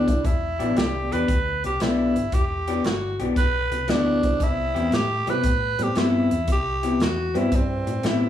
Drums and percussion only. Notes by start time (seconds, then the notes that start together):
0.08 kick, closed hi-hat
0.25 kick, closed hi-hat
0.60 closed hi-hat
0.77 snare, closed hi-hat
1.12 closed hi-hat
1.28 kick, closed hi-hat
1.64 closed hi-hat
1.80 snare, closed hi-hat
2.16 closed hi-hat
2.32 kick, closed hi-hat
2.68 closed hi-hat
2.84 snare, closed hi-hat
3.20 closed hi-hat
3.36 kick, snare, closed hi-hat
3.72 closed hi-hat
3.88 snare, closed hi-hat
4.23 kick, closed hi-hat
4.40 kick, closed hi-hat
4.76 closed hi-hat
4.92 snare, closed hi-hat
5.27 closed hi-hat
5.43 kick, closed hi-hat
5.79 closed hi-hat
5.95 snare, closed hi-hat
6.31 closed hi-hat
6.48 kick, closed hi-hat
6.83 closed hi-hat
7.00 snare, closed hi-hat
7.35 closed hi-hat
7.52 kick, closed hi-hat
7.87 closed hi-hat
8.03 snare, closed hi-hat